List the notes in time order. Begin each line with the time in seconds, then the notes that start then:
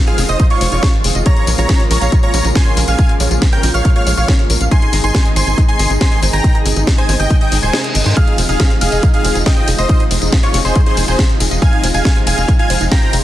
Already playing: D#3 F3 G#3 C4 F4
0.07 G#4 C5 F5 F6, closed hi-hat
0.18 F1 G#4, snare, open hi-hat, tambourine
0.29 F1 C5 D#5 D#6, closed hi-hat, tambourine
0.40 D#4, kick, closed hi-hat, tambourine
0.50 D#4 F4 C#5 C#6, closed hi-hat
0.61 F1 C5, open hi-hat, tambourine
0.72 F1 D#4 F4 C#5 C#6, closed hi-hat, tambourine
0.83 F5, kick, snare, open hi-hat
0.94 C5, closed hi-hat
1.04 F1 G#4, open hi-hat, tambourine
1.15 F1 D#5, closed hi-hat, tambourine
1.26 C#3 F3 A#3 F4 C#5 A#5 A#6, kick, closed hi-hat, tambourine
1.37 F4, closed hi-hat
1.47 A#1 C#5, open hi-hat, tambourine
1.58 A#1 F4 C#5 A#5 A#6, closed hi-hat, tambourine
1.69 G#5, kick, snare, closed hi-hat, tambourine
1.80 C#5, closed hi-hat
1.91 A#1 A#4 C#5 A#5 A#6, open hi-hat, tambourine
2.01 A#1 F5, closed hi-hat, tambourine
2.12 F4, kick, closed hi-hat, tambourine
2.23 F4 C#5 A#5 A#6, closed hi-hat
2.34 A#1 C#5, open hi-hat, tambourine
2.45 A#1 F4, closed hi-hat, tambourine
2.55 G#5 C6 C7, kick, snare, closed hi-hat
2.66 C#5, closed hi-hat
2.77 A#1 A#4, open hi-hat, tambourine
2.88 A#1 F5 G#5 G#6, closed hi-hat, tambourine
2.99 F4, kick, closed hi-hat, tambourine
3.09 F4, closed hi-hat
3.20 A#1 C#5, open hi-hat, tambourine
3.31 A#1 F4, closed hi-hat, tambourine
3.42 G#5, kick, snare, closed hi-hat, tambourine
3.52 A#4 C#5 G5 G6, closed hi-hat
3.63 A#1 A#4, snare, open hi-hat, tambourine
3.74 A#1 C#5 F5 F6, closed hi-hat, tambourine
3.85 F4, kick, closed hi-hat
3.96 F4 C#5 F5 F6, closed hi-hat
4.07 A#1 C#5, open hi-hat, tambourine
4.17 A#1 F4 C#5 F5 F6, closed hi-hat, tambourine
4.28 G#5, kick, snare, open hi-hat
4.39 C#5, closed hi-hat
4.50 A#1 A#4, open hi-hat, tambourine
4.61 A#1 F5, closed hi-hat, tambourine
4.71 C3 D#3 G#3 D#4 G#4 G#5 C6 C7, kick, closed hi-hat, tambourine
4.82 D#4, closed hi-hat
4.93 G#1 D#5, open hi-hat, tambourine
5.04 G#1 D#4 G#5 C6 C7, closed hi-hat, tambourine
5.14 C6, kick, snare, closed hi-hat
5.25 D#5, closed hi-hat
5.36 G#1 C5 G#5 C6 C7, open hi-hat, tambourine
5.47 G#1 G#5, closed hi-hat, tambourine
5.58 D#4, kick, closed hi-hat, tambourine
5.68 D#4 G#5 C6 C7, closed hi-hat
5.79 G#1 D#5, open hi-hat, tambourine
5.90 G#1 D#4, tambourine
6.01 G#5 C6 C7, kick, snare, closed hi-hat
6.12 D#5, closed hi-hat
6.22 G#1 C5, open hi-hat, tambourine
6.33 G#1 G5 G#5 A#5 A#6, closed hi-hat, tambourine
6.44 D#4, kick, closed hi-hat
6.55 D#4, closed hi-hat
6.66 G#1 D#5, open hi-hat, tambourine
6.76 G#1 D#4, closed hi-hat, tambourine
6.87 C6, kick, snare, closed hi-hat
6.98 C5 D#5 G#5 G#6, closed hi-hat
7.09 G#1 C5, snare, open hi-hat, tambourine
7.19 G#1 D#5 G5 G#5 G6, closed hi-hat, tambourine
7.30 D#4, kick, closed hi-hat, reverse cymbal
7.41 D#4 D#5 G5 G6, closed hi-hat
7.52 G#1 D#4, open hi-hat, tambourine
7.62 D#1 C5 G#5 C6 G#6, closed hi-hat, tambourine
7.73 D#4, snare, open hi-hat, tambourine
7.84 D#6, closed hi-hat
7.95 G#1 D#5, open hi-hat, tambourine
8.06 G#2 C6, closed hi-hat, tambourine
8.17 F3 D#4 F4 G#4 F5 F6, kick, closed hi-hat, tambourine
8.27 D#4, closed hi-hat
8.38 F1 C5, open hi-hat, ride, tambourine
8.49 F1 D#4 G#4 F5 F6, closed hi-hat, tambourine
8.60 F5, kick, snare, closed hi-hat, tambourine
8.71 C5, closed hi-hat
8.81 F1 G#4 F5 F6, open hi-hat, ride, tambourine
8.92 F1 D#5, closed hi-hat, tambourine
9.03 D#4, kick, closed hi-hat, tambourine
9.14 D#4 G#4 F5 F6, closed hi-hat
9.25 F1 C5, open hi-hat, ride, tambourine
9.35 F1 D#4, closed hi-hat, tambourine
9.46 D#5 F5 G5 G6, kick, snare, closed hi-hat
9.57 C5, closed hi-hat
9.68 F1 G#4, open hi-hat, ride, tambourine
9.78 F1 C5 D#5 D#6, closed hi-hat, tambourine
9.89 D#4, kick, closed hi-hat, tambourine
10.00 D#4, closed hi-hat
10.11 F1 C5, open hi-hat, ride, tambourine
10.22 F1 D#4, closed hi-hat, tambourine
10.32 F5, kick, snare, closed hi-hat
10.43 F4 C5 C#5 C#6, closed hi-hat
10.54 F1 G#4, snare, open hi-hat, ride, tambourine
10.65 F1 G#4 C5 D#5 C6, closed hi-hat, tambourine
10.76 D#4, kick, closed hi-hat, tambourine
10.86 D#4 G#4 C5 C6, closed hi-hat
10.97 F1 C5, open hi-hat, ride, tambourine
11.08 F1 D#4 G#4 C5 C6, closed hi-hat, tambourine
11.19 F5, kick, snare, open hi-hat
11.30 C5, closed hi-hat
11.40 F1 G#4, open hi-hat, ride, tambourine
11.51 F1 D#5, closed hi-hat, tambourine
11.62 D#4 F5 G#5 G#6, kick, closed hi-hat, tambourine
11.73 D#4, closed hi-hat
11.84 F1 C5, open hi-hat, ride, tambourine
11.94 F1 D#4 F5 G#5 G#6, closed hi-hat, tambourine
12.05 F5, kick, snare, closed hi-hat
12.16 C5, closed hi-hat
12.27 F1 G#4 F5 G#5 G#6, open hi-hat, ride, tambourine
12.38 F1 D#5, closed hi-hat, tambourine
12.48 D#4, kick, closed hi-hat
12.59 D#4 F5 G#5 G#6, closed hi-hat
12.70 F1 C5, open hi-hat, ride, tambourine
12.81 F1 D#4, closed hi-hat, tambourine
12.91 F5 G5 A#5 A#6, kick, snare, closed hi-hat, tambourine
13.02 C5, closed hi-hat
13.13 F1 G#4, open hi-hat, ride, tambourine